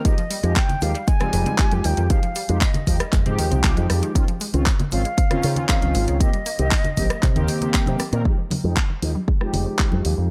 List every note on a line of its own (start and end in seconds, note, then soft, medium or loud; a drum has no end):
0.04 0.12 D#3 loud
0.04 0.14 F3 medium
0.04 0.14 G#3 medium
0.04 0.14 D#4 medium
0.04 0.15 G4 medium
0.04 0.58 D#5 loud
0.04 kick loud
0.04 closed hi-hat medium
0.04 shaker medium
0.18 0.22 F3 loud
0.18 closed hi-hat soft
0.18 shaker soft
0.30 0.40 G3 loud
0.30 open hi-hat loud
0.30 shaker medium
0.43 0.54 F2 loud
0.43 0.53 F3 medium
0.43 0.50 G#3 medium
0.43 0.53 G#3 medium
0.43 0.53 D#4 medium
0.43 0.53 G4 medium
0.43 closed hi-hat soft
0.43 shaker soft
0.56 0.63 C4 medium
0.56 0.83 G5 loud
0.56 kick loud
0.56 clap loud
0.56 closed hi-hat medium
0.56 shaker soft
0.69 0.75 D#3 medium
0.69 closed hi-hat soft
0.69 low conga medium
0.69 shaker soft
0.81 0.93 D#2 medium
0.81 0.91 F3 medium
0.81 0.88 F3 medium
0.81 0.91 G#3 medium
0.81 0.91 D#4 medium
0.81 0.91 G4 loud
0.81 1.08 F5 loud
0.81 open hi-hat loud
0.81 shaker medium
0.95 1.01 G3 loud
0.95 closed hi-hat medium
0.95 shaker soft
1.07 1.14 G#3 loud
1.07 1.87 G#5 loud
1.07 kick loud
1.07 closed hi-hat medium
1.07 shaker soft
1.20 1.56 F3 loud
1.20 1.56 G3 loud
1.20 1.56 G#3 medium
1.20 1.24 C4 loud
1.20 1.56 D#4 medium
1.20 cross-stick medium
1.20 closed hi-hat soft
1.20 low conga medium
1.20 shaker soft
1.33 1.44 F1 loud
1.33 1.43 D#3 loud
1.33 open hi-hat loud
1.33 shaker loud
1.46 1.56 C4 medium
1.46 closed hi-hat medium
1.46 low conga medium
1.46 shaker soft
1.58 2.07 F3 medium
1.58 1.65 G3 medium
1.58 2.07 G#3 medium
1.58 2.07 D#4 medium
1.58 2.07 G4 loud
1.58 kick loud
1.58 clap loud
1.58 closed hi-hat medium
1.58 shaker soft
1.72 1.83 F2 medium
1.72 1.78 G#3 medium
1.72 closed hi-hat soft
1.72 high conga medium
1.72 shaker soft
1.84 1.96 D#2 loud
1.84 1.91 G3 medium
1.84 2.12 G5 loud
1.84 open hi-hat loud
1.84 shaker medium
1.97 2.08 F2 loud
1.97 2.04 D#3 loud
1.97 closed hi-hat medium
1.97 shaker soft
2.09 2.17 D#3 loud
2.09 2.19 F3 medium
2.09 2.19 G#3 medium
2.09 2.20 D#4 medium
2.09 2.20 G4 medium
2.09 2.62 F5 loud
2.09 kick loud
2.09 closed hi-hat medium
2.09 shaker medium
2.23 2.27 F3 loud
2.23 closed hi-hat soft
2.23 shaker soft
2.35 2.46 G3 loud
2.35 open hi-hat loud
2.35 shaker medium
2.48 2.60 F2 loud
2.48 2.58 F3 medium
2.48 2.58 G#3 medium
2.48 2.55 G#3 medium
2.48 2.58 D#4 medium
2.48 2.58 G4 medium
2.48 closed hi-hat medium
2.48 shaker soft
2.61 2.68 C4 medium
2.61 3.35 D#5 medium
2.61 kick loud
2.61 clap loud
2.61 open hi-hat medium
2.61 shaker medium
2.74 2.81 D#3 medium
2.74 closed hi-hat soft
2.74 low conga medium
2.74 shaker soft
2.87 2.98 D#2 medium
2.87 2.96 F3 medium
2.87 2.94 F3 medium
2.87 2.96 G#3 medium
2.87 2.97 D#4 medium
2.87 2.97 G4 loud
2.87 kick medium
2.87 open hi-hat loud
2.87 shaker medium
2.99 3.06 G3 loud
2.99 cross-stick medium
2.99 closed hi-hat medium
2.99 shaker soft
3.12 3.24 F1 loud
3.12 3.19 G#3 loud
3.12 kick loud
3.12 clap medium
3.12 closed hi-hat medium
3.12 shaker medium
3.25 3.37 G#2 medium
3.25 3.61 F3 loud
3.25 3.61 G#3 medium
3.25 3.30 C4 loud
3.25 3.61 D#4 medium
3.25 3.61 G4 loud
3.25 closed hi-hat soft
3.25 low conga medium
3.25 shaker soft
3.39 3.50 D#2 medium
3.39 3.48 D#3 loud
3.39 open hi-hat loud
3.39 shaker medium
3.51 3.73 C2 loud
3.51 3.61 C4 medium
3.51 closed hi-hat medium
3.51 low conga medium
3.51 shaker soft
3.63 4.12 F3 medium
3.63 3.70 G3 medium
3.63 4.12 G#3 medium
3.63 4.12 D#4 medium
3.63 4.12 G4 loud
3.63 kick loud
3.63 clap loud
3.63 closed hi-hat medium
3.63 shaker medium
3.77 3.88 F2 loud
3.77 3.83 G#3 medium
3.77 closed hi-hat soft
3.77 high conga medium
3.77 shaker soft
3.90 4.01 F2 medium
3.90 3.96 G3 medium
3.90 cross-stick medium
3.90 open hi-hat loud
3.90 shaker medium
4.02 4.09 D#3 loud
4.02 closed hi-hat medium
4.02 shaker soft
4.14 4.24 D#3 medium
4.14 4.22 D#3 loud
4.14 4.25 C4 medium
4.14 4.25 C#4 medium
4.14 4.25 F4 medium
4.14 kick loud
4.14 closed hi-hat medium
4.14 shaker soft
4.28 4.32 F3 loud
4.28 closed hi-hat soft
4.28 shaker soft
4.40 4.51 G#3 loud
4.40 open hi-hat loud
4.40 shaker loud
4.53 4.65 C#2 loud
4.53 4.63 D#3 medium
4.53 4.63 C4 medium
4.53 4.60 C4 medium
4.53 4.63 C#4 medium
4.53 4.63 F4 medium
4.53 closed hi-hat medium
4.53 shaker soft
4.66 4.73 C#4 medium
4.66 kick loud
4.66 clap loud
4.66 closed hi-hat medium
4.66 shaker medium
4.79 4.86 D#3 medium
4.79 closed hi-hat soft
4.79 low conga medium
4.79 shaker soft
4.91 5.03 G#1 medium
4.91 5.01 D#3 medium
4.91 4.99 F3 medium
4.91 5.01 C4 medium
4.91 5.02 C#4 medium
4.91 5.02 F4 loud
4.91 5.65 F5 loud
4.91 open hi-hat loud
4.91 shaker medium
5.05 5.11 G#3 loud
5.05 closed hi-hat medium
5.05 shaker soft
5.17 5.24 C4 loud
5.17 kick loud
5.17 closed hi-hat medium
5.17 shaker medium
5.30 5.66 D#3 loud
5.30 5.66 C4 medium
5.30 5.66 C#4 medium
5.30 5.35 C#4 loud
5.30 5.66 F4 loud
5.30 cross-stick medium
5.30 closed hi-hat soft
5.30 low conga medium
5.30 shaker soft
5.43 5.55 C#3 loud
5.43 5.53 D#3 loud
5.43 open hi-hat loud
5.43 shaker loud
5.56 5.66 C#4 medium
5.56 closed hi-hat medium
5.56 low conga medium
5.56 shaker soft
5.68 6.17 D#3 medium
5.68 5.76 G#3 medium
5.68 6.17 C4 medium
5.68 6.17 C#4 medium
5.68 6.17 F4 loud
5.68 6.22 F5 loud
5.68 kick loud
5.68 clap loud
5.68 closed hi-hat medium
5.68 shaker medium
5.81 5.93 C#2 medium
5.81 5.89 C4 medium
5.81 closed hi-hat soft
5.81 high conga medium
5.81 shaker soft
5.94 6.06 G#1 loud
5.94 6.01 G#3 medium
5.94 open hi-hat loud
5.94 shaker medium
6.07 6.19 C#2 loud
6.07 6.14 D#3 loud
6.07 closed hi-hat medium
6.07 shaker soft
6.20 6.30 D#3 medium
6.20 6.27 D#3 loud
6.20 6.30 A#3 medium
6.20 6.30 C4 medium
6.20 6.30 G4 loud
6.20 7.74 D#5 loud
6.20 kick loud
6.20 closed hi-hat medium
6.20 shaker medium
6.33 6.37 G3 loud
6.33 closed hi-hat soft
6.33 shaker soft
6.46 6.56 A#3 loud
6.46 open hi-hat loud
6.46 shaker medium
6.58 6.70 C2 loud
6.58 6.68 D#3 medium
6.58 6.68 A#3 medium
6.58 6.68 C4 medium
6.58 6.65 C4 medium
6.58 6.68 G4 medium
6.58 closed hi-hat medium
6.58 shaker soft
6.71 6.78 D#4 medium
6.71 kick loud
6.71 clap loud
6.71 open hi-hat medium
6.71 shaker medium
6.84 6.91 D#3 medium
6.84 closed hi-hat soft
6.84 low conga medium
6.84 shaker soft
6.96 7.08 A#1 medium
6.96 7.06 D#3 medium
6.96 7.04 G3 medium
6.96 7.06 A#3 medium
6.96 7.07 C4 medium
6.96 7.07 G4 loud
6.96 kick medium
6.96 open hi-hat loud
6.96 high conga medium
6.96 shaker medium
7.10 7.17 A#3 loud
7.10 cross-stick medium
7.10 closed hi-hat medium
7.10 shaker soft
7.23 7.34 C3 loud
7.23 7.29 C4 loud
7.23 kick loud
7.23 clap medium
7.23 closed hi-hat medium
7.23 shaker medium
7.35 7.47 D#2 medium
7.35 7.58 D#3 loud
7.35 7.59 A#3 medium
7.35 7.59 C4 medium
7.35 7.40 D#4 loud
7.35 7.59 G4 loud
7.35 closed hi-hat soft
7.35 low conga medium
7.35 shaker soft
7.48 7.58 D#3 loud
7.48 open hi-hat loud
7.48 shaker loud
7.61 7.84 D#3 loud
7.61 7.84 A#3 medium
7.61 7.84 C4 medium
7.61 7.71 D#4 medium
7.61 7.84 G4 loud
7.61 closed hi-hat medium
7.61 low conga medium
7.61 shaker soft
7.74 7.81 A#3 medium
7.74 kick loud
7.74 clap loud
7.74 closed hi-hat medium
7.74 shaker medium
7.86 7.98 C3 medium
7.86 8.02 D#3 medium
7.86 8.02 A#3 medium
7.86 8.02 C4 medium
7.86 7.94 C4 medium
7.86 8.02 G4 medium
7.86 closed hi-hat soft
7.86 high conga medium
7.86 shaker soft
7.99 8.06 A#3 medium
7.99 muted fingered electric bass stroke soft
7.99 cross-stick medium
7.99 open hi-hat loud
7.99 shaker medium
8.12 8.23 A#2 loud
8.12 8.22 D#3 medium
8.12 8.19 D#3 loud
8.12 8.22 A#3 medium
8.12 8.22 C4 medium
8.12 8.23 A#4 loud
8.12 closed hi-hat medium
8.12 shaker soft
8.25 8.32 D#3 loud
8.25 8.35 F3 medium
8.25 8.35 G#3 medium
8.25 8.35 D#4 medium
8.25 8.35 G4 medium
8.25 kick loud
8.38 8.42 F3 loud
8.51 8.61 G3 loud
8.51 open hi-hat loud
8.51 high conga medium
8.51 low conga loud
8.63 8.75 F2 medium
8.63 8.73 F3 medium
8.63 8.73 G#3 medium
8.63 8.71 G#3 medium
8.63 8.73 D#4 medium
8.63 8.73 G4 medium
8.77 8.83 C4 medium
8.77 kick loud
8.77 clap loud
8.90 8.96 D#3 medium
9.01 9.13 D#2 medium
9.01 9.11 F3 medium
9.01 9.09 F3 medium
9.01 9.12 G#3 medium
9.01 9.12 D#4 medium
9.01 9.12 G4 medium
9.01 open hi-hat loud
9.15 9.22 G3 loud
9.15 high conga medium
9.28 9.35 G#3 loud
9.28 kick loud
9.40 9.76 F3 loud
9.40 9.76 G#3 medium
9.40 9.45 C4 loud
9.40 9.76 D#4 medium
9.40 9.77 G4 loud
9.40 cross-stick medium
9.53 9.65 F1 medium
9.53 9.63 D#3 loud
9.53 open hi-hat loud
9.53 low conga medium
9.66 9.76 C4 medium
9.79 10.27 F3 medium
9.79 9.86 G3 medium
9.79 10.28 G#3 medium
9.79 10.28 D#4 medium
9.79 10.28 G4 loud
9.79 kick loud
9.79 clap loud
9.92 10.03 F2 medium
9.92 9.99 G#3 medium
9.92 high conga loud
10.05 10.16 D#2 medium
10.05 10.12 G3 medium
10.05 open hi-hat loud
10.18 10.29 F2 medium
10.18 10.24 D#3 loud